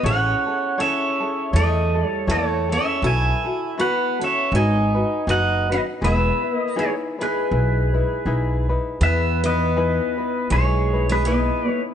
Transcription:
0.03 upright bass A1, steel-string acoustic guitar C#4, ukulele E4 G#4 A4 C#5, pedal steel guitar C#5 F#5
0.46 ukulele E4 G#4 A4
0.78 steel-string acoustic guitar C#4, ukulele E4 G#4 A4 C#5, pedal steel guitar C#5 E5
1.20 ukulele E4 G#4 A4
1.53 upright bass E2, steel-string acoustic guitar A3, ukulele E4 A4 C#5, pedal steel guitar A4 D#5
1.95 ukulele E4 A4
2.07 steel-string acoustic guitar G3, pedal steel guitar C#5
2.27 upright bass E2, steel-string acoustic guitar A3, ukulele E4 A4 C#5, pedal steel guitar A4
2.32 pedal steel guitar C#5
2.69 steel-string acoustic guitar C#4, ukulele E4 G#4 A4, pedal steel guitar C#5
2.73 pedal steel guitar E5
3.02 upright bass B1, ukulele E4 F#4 A4 B4, steel-string acoustic guitar E4
3.06 pedal steel guitar E5 G#5
3.45 ukulele E4 F#4 A4
3.78 steel-string acoustic guitar B3, ukulele E4 F#4 A4 B4, pedal steel guitar B4 F#5
4.19 steel-string acoustic guitar C#4, ukulele E4 F#4 A4
4.24 pedal steel guitar C#5 E5
4.52 upright bass G#1, ukulele D#4 F#4 G#4 B4, steel-string acoustic guitar D#4, pedal steel guitar D#5
4.56 pedal steel guitar G#5
4.95 ukulele D#4 F#4 B4
5.27 upright bass F#1, ukulele D#4 F#4 G#4 B4, steel-string acoustic guitar D#4, pedal steel guitar D#5
5.31 pedal steel guitar F#5
5.69 steel-string acoustic guitar B3, ukulele D#4 F#4 B4, pedal steel guitar B4 D#5
6.01 upright bass E1, steel-string acoustic guitar B3, ukulele E4 G#4 B4, pedal steel guitar B4 E5
6.43 ukulele E4 B4
6.52 steel-string acoustic guitar A#3
6.57 pedal steel guitar D#5
6.76 steel-string acoustic guitar G#3, ukulele D#4 E4 G#4 B4, pedal steel guitar G#4
6.80 pedal steel guitar C#5
7.19 steel-string acoustic guitar G#3, ukulele D#4 E4 B4, pedal steel guitar G#4
7.23 pedal steel guitar B4
7.51 upright bass B1, ukulele D#4 E4 G#4 B4
7.93 ukulele D#4 E4 B4
8.25 upright bass B1, ukulele D#4 E4 G#4 B4
8.69 ukulele D#4 E4 B4
9.01 upright bass E2, steel-string acoustic guitar B3, ukulele E4 G#4 B4, pedal steel guitar B4 E5
9.44 steel-string acoustic guitar B3, ukulele D#4 E4 B4, pedal steel guitar B4 D#5
9.76 ukulele D#4 E4 G#4 B4
10.18 ukulele D#4 E4 B4
10.50 upright bass B1, steel-string acoustic guitar G#3, ukulele D#4 E4 G#4 B4, pedal steel guitar G#4 C#5
10.93 ukulele D#4 E4 B4
11.09 steel-string acoustic guitar G#3, pedal steel guitar G#4 B4
11.25 steel-string acoustic guitar B3, ukulele D#4 E4 G#4 B4, pedal steel guitar B4 D#5
11.67 steel-string acoustic guitar A3, ukulele D#4 E4 B4, pedal steel guitar C#5

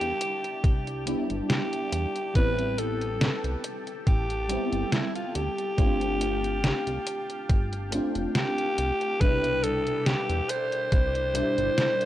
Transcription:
Already playing: fm electric piano G3 B3 D4 E4, analog synth pad E4 D5 G5 A5, alto saxophone G4
0.01 analog synth bass E2, closed hi-hat
0.21 closed hi-hat
0.44 closed hi-hat
0.64 analog synth bass C2, kick, closed hi-hat
0.87 closed hi-hat
1.06 fm electric piano G3 B3 D4 E4, closed hi-hat
1.30 analog synth bass G1, closed hi-hat
1.49 alto saxophone G4, snare, closed hi-hat
1.73 closed hi-hat
1.92 analog synth bass E2, closed hi-hat
2.16 closed hi-hat
2.34 analog synth bass A1, fm electric piano G3 B3 C4 E4, analog synth pad G4 A4 G5, alto saxophone B4, kick, closed hi-hat
2.59 closed hi-hat
2.78 alto saxophone A4, closed hi-hat
3.01 closed hi-hat
3.21 snare, closed hi-hat
3.44 analog synth bass C2, closed hi-hat
3.64 closed hi-hat
3.87 closed hi-hat
4.07 analog synth bass A1, alto saxophone G4, kick, closed hi-hat
4.30 closed hi-hat
4.48 fm electric piano G3 B3 C4 E4, closed hi-hat
4.73 analog synth bass G1, closed hi-hat
4.92 alto saxophone E4, snare, closed hi-hat
5.16 alto saxophone F4, closed hi-hat
5.35 analog synth bass D2, alto saxophone G4, closed hi-hat
5.58 closed hi-hat
5.77 analog synth bass G1, fm electric piano A3 C4 D4 F4, analog synth pad F5, kick, closed hi-hat
6.01 closed hi-hat
6.21 closed hi-hat
6.44 closed hi-hat
6.64 snare, closed hi-hat
6.87 analog synth bass C2, closed hi-hat
7.07 closed hi-hat
7.30 closed hi-hat
7.49 analog synth bass G1, kick, closed hi-hat
7.73 closed hi-hat
7.91 fm electric piano A3 C4 D4 F4, closed hi-hat
8.15 analog synth bass F1, closed hi-hat
8.35 alto saxophone G4, snare, closed hi-hat
8.58 closed hi-hat
8.78 analog synth bass C2, closed hi-hat
9.01 closed hi-hat
9.19 analog synth bass C2, fm electric piano B2 G3 D4 E4, analog synth pad E4 D5 B5, alto saxophone B4, kick, closed hi-hat
9.44 closed hi-hat
9.63 alto saxophone A4, closed hi-hat
9.87 closed hi-hat
10.06 alto saxophone G4, snare, closed hi-hat
10.29 analog synth bass E2, closed hi-hat
10.49 alto saxophone C5, closed hi-hat
10.72 closed hi-hat
10.92 analog synth bass C2, kick, closed hi-hat
11.15 closed hi-hat
11.34 fm electric piano B2 G3 D4 E4, closed hi-hat
11.58 analog synth bass G1, closed hi-hat
11.78 snare, closed hi-hat
12.01 closed hi-hat

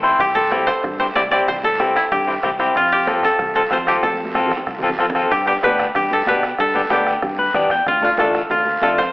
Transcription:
Already playing: fingered electric bass A1
0.03 clean electric guitar C4 E4 C5, short guiro
0.19 fingered electric bass C2, koto G4, bombo low, bombo rim, high conga, low conga, long guiro
0.35 koto A4, high conga
0.51 clean electric guitar C4 E4 G4, bombo rim, high conga, short guiro
0.67 koto C5, bombo rim, short guiro
0.83 fingered electric bass G2, bombo low, bombo rim, high conga, low conga, long guiro
1.00 clean electric guitar C4 E4 G4, koto C5, high conga
1.15 fingered electric bass C2, clean electric guitar C4 E4 G4, koto D5, bombo rim, high conga, short guiro
1.31 clean electric guitar C4 E4 G4, koto D5, bombo rim, short guiro
1.48 fingered electric bass C2, koto C5, bombo low, bombo rim, high conga, low conga, long guiro
1.64 koto A4, high conga
1.80 clean electric guitar C4 E4 G4, bombo rim, high conga, short guiro
1.96 koto E4, bombo rim, short guiro
2.12 fingered electric bass G2, koto G4, bombo low, bombo rim, high conga, low conga, long guiro
2.27 clean electric guitar C4 E4 G4
2.43 fingered electric bass C2, clean electric guitar C4 E4 G4, bombo low, bombo rim, high conga, low conga, short guiro
2.59 clean electric guitar C4 E4 G4, bombo rim, short guiro
2.75 fingered electric bass F2, koto F4, bombo low, bombo rim, high conga, long guiro
2.92 koto G4
3.07 clean electric guitar C4 F4 A4, bombo rim, high conga, short guiro
3.23 koto A4, bombo rim, short guiro
3.39 fingered electric bass C2, bombo low, bombo rim, high conga, low conga, long guiro
3.55 clean electric guitar C4 F4 A4, koto A4, high conga
3.71 fingered electric bass F2, clean electric guitar C4 F4 A4, koto C5, bombo rim, high conga, low conga, short guiro
3.87 clean electric guitar C4 F4 A4, koto G4, bombo rim, short guiro
4.03 fingered electric bass F2, koto A4, bombo low, bombo rim, high conga, long guiro
4.14 high conga
4.25 high conga
4.35 clean electric guitar C4 F4 A4, bombo rim, high conga, short guiro
4.46 low conga
4.51 bombo rim, short guiro
4.57 low conga
4.66 fingered electric bass C2, bombo low, bombo rim, long guiro
4.79 low conga
4.83 clean electric guitar C4 F4 A4
4.89 low conga
4.99 fingered electric bass F2, clean electric guitar C4 F4 A4, bombo rim, short guiro
5.10 low conga
5.15 clean electric guitar C4 F4 A4, bombo rim, short guiro
5.21 low conga
5.31 fingered electric bass G2, koto G4, bombo low, bombo rim, high conga, long guiro
5.46 clean electric guitar B3 D4 G4, koto G4
5.62 fingered electric bass D2, clean electric guitar B3 D4 G4, koto B4, bombo rim, high conga, short guiro
5.78 bombo rim, short guiro
5.95 fingered electric bass G2, koto G4, bombo low, bombo rim, high conga, low conga, long guiro
6.11 koto A4, high conga
6.26 fingered electric bass B2, clean electric guitar B3 D4 G4, koto B4, bombo rim, high conga, short guiro
6.43 bombo rim, short guiro
6.58 fingered electric bass G2, koto A4, bombo low, bombo rim, high conga, long guiro
6.75 clean electric guitar B3 D4 G4, high conga
6.90 fingered electric bass D2, clean electric guitar B3 D4 G4, koto G4, bombo rim, high conga, short guiro
7.07 bombo rim, short guiro
7.22 fingered electric bass G2, bombo low, bombo rim, high conga, low conga, long guiro
7.39 clean electric guitar B4, high conga
7.54 fingered electric bass E2, clean electric guitar B3 D4 G4 D5, bombo low, bombo rim, high conga, low conga, short guiro
7.70 clean electric guitar G5, bombo rim, short guiro
7.86 fingered electric bass D2, koto F4, bombo low, bombo rim, high conga, low conga, long guiro
8.02 clean electric guitar A3 D4 F4, koto F4, high conga
8.17 fingered electric bass A1, clean electric guitar A3 D4 F4, koto A4, bombo rim, high conga, short guiro
8.34 bombo rim, short guiro
8.50 fingered electric bass D2, koto F4, bombo low, bombo rim, high conga, low conga, long guiro
8.66 high conga
8.81 fingered electric bass F2, clean electric guitar A3 D4 F4, koto A4, bombo rim, high conga, low conga, short guiro
8.98 koto C5, bombo rim, short guiro

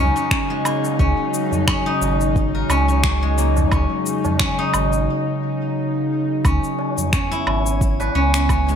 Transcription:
Already playing: sub bass C#2, synth drone C#3 F#3 D#4, guzheng G#3 A#3 C#4 D#4 A#4
0.16 guzheng C#4, cabasa
0.31 guzheng C#4, finger snap, kick, cabasa
0.50 guzheng G#3
0.65 guzheng A#3, tabla tin, cabasa, low woodblock
0.83 tabla na, tabla tin, cabasa
0.99 sub bass C#2, guzheng C#4, kick, cabasa
1.33 tabla tin, cabasa
1.51 tabla na, tabla ge, cabasa
1.68 guzheng C#4, finger snap, kick, cabasa, low woodblock
1.86 guzheng D#4
2.01 sub bass G#1, tabla na, cabasa
2.21 cabasa
2.36 kick, cabasa
2.55 guzheng A#4
2.69 sub bass C#2, guzheng C#4, tabla na, cabasa, low woodblock
2.88 guzheng C#4, cabasa
3.04 guzheng C#4, finger snap, kick, cabasa
3.22 guzheng G#3, tabla tin
3.38 guzheng A#3, cabasa
3.56 tabla na, tabla ge, cabasa
3.72 sub bass C#2, guzheng C#4, kick, cabasa, low woodblock
4.06 tabla tin, cabasa
4.25 tabla na, tabla ge, cabasa
4.39 guzheng C#4, finger snap, kick, cabasa
4.59 guzheng D#4
4.74 sub bass G#1, tabla na, cabasa, low woodblock
4.93 cabasa
6.44 sub bass C#2, synth drone C#3 B3 E4, synth texture C#4 C#5, guzheng C#4, kick, cabasa, low woodblock
6.64 cabasa
6.79 tabla na, tabla tin
6.98 tabla ge, cabasa
7.13 guzheng C#4, finger snap, kick, cabasa
7.32 guzheng E4, cabasa
7.47 sub bass G#1, tabla na, low woodblock
7.66 cabasa
7.81 kick, cabasa
8.00 guzheng B4, tabla na, cabasa
8.15 sub bass C#2, guzheng C#4
8.34 guzheng C#4, finger snap, cabasa
8.49 guzheng C#4, kick, cabasa, low woodblock
8.68 guzheng G#3, tabla tin, cabasa

